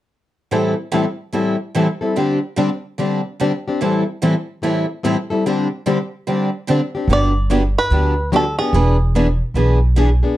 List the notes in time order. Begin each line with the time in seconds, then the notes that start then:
0.52 A2 E3 G3 C4 E4 A4
0.93 A2 E3 G3 C4 E4 A4
1.33 A2 E3 G3 C4 E4 A4
1.76 A2 E3 G3 C4 E4 A4
2.01 G3 C4 E4 A4
2.17 D3 G3 C4 D4 G4
2.57 D3 G3 C4 D4 G4
2.99 D3 G3 C4 D4 G4
3.41 D3 G3 C4 D4 G4
3.68 C4 D4 G4
3.81 A2 E3 G3 C4 E4 A4
4.23 A2 E3 G3 C4 E4 A4
4.62 A2 E3 G3 C4 E4 A4
5.03 A2 E3 G3 C4 E4 A4
5.30 G3 C4 E4 A4
5.46 D3 G3 C4 D4 G4
5.86 D3 G3 C4 D4 G4
6.28 D3 G3 C4 D4 G4
6.70 D3 G3 C4 D4 G4
6.95 C4 D4 G4
7.08 G1 D3 F#3 B3 D4 G4
7.13 D5
7.50 D3 F#3 B3 D4 G4
7.78 B4
7.91 D2 D3 F#3 B3 D4 G4
8.32 D3 F#3 B3 D4 G4 A4
8.59 B3 D4 G4 G#4
8.73 E1 E3 B3 D4 G#4 B4
9.15 E3 B3 D4 G#4 B4
9.54 B1 E3 B3 D4 G#4 B4
9.97 E3 B3 D4 G#4 B4
10.23 B3 D4 G#4